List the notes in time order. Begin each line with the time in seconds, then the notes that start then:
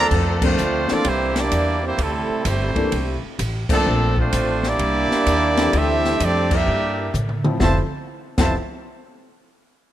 Already playing: D3 F3 A3 C4 D4 A4
0.11 F2, kick, crash
0.41 F3 A3 A#3 C4 D4 F4 A4 C5, kick, crash
0.45 A3 D4
0.58 D2, hi-hat pedal
0.88 E3 F3 A3 A#3 C4 D4 A4, muted upright bass stroke, snare
0.93 C4 F4 A4 D5
1.05 C2 E3 G3 C4 G4 C5, kick, ride
1.09 A#3 E4
1.36 G3 A#3 D4, snare, ride
1.40 A#3 E4 G4 D5
1.51 E2, kick, hi-hat pedal, ride
1.83 E3 G3 C4 E4 G4 C5
1.87 A#3
1.98 D2 A2 C3 G3 A3, kick, ride
2.02 C4 E4 A4
2.29 muted upright bass stroke
2.45 G1 G3 A3 C4 E4 G4 C5, kick, hi-hat pedal, ride
2.75 E3 A#3 C4 D4 A4, muted upright bass stroke, kick, ride
2.92 C2, kick, ride
3.23 muted upright bass stroke
3.39 A1, kick, hi-hat pedal, ride
3.69 D3 F3 A3 A#3 C4 D4 A4, kick, crash
3.87 A#1
4.16 F3 A3 C4 D4 F4 C5, kick
4.32 A1, kick, hi-hat pedal, ride
4.63 G3 A#3 D4 E4, snare
4.67 A#3 G4 D5
4.79 C2, kick, ride
5.11 muted upright bass stroke, snare
5.26 D#2, kick, hi-hat pedal, ride
5.57 E3 A3 C4 D4 G4, snare, ride
5.73 D2 A3 C4 E4 G4 E5, kick, ride
5.78 A4
6.04 snare
6.20 F2 G3 A3 D4, kick, hi-hat pedal, ride
6.24 C4 G4 A4 D5
6.51 G3 A#3 D4 E4 G4 A#4 E5, kick, crash
6.67 G2
7.14 A2, hi-hat pedal, mid tom
7.29 mid tom
7.44 F3 A3 C4 E4 A4, mid tom
7.60 F1 F2 C3 E3 F3 A3 C4 E4 F4 A4 C5 E5 A5, kick, snare
8.38 F1 F2 C3 E3 F3 A3 C4 E4 F4 A4 C5 E5 A5, kick, snare, crash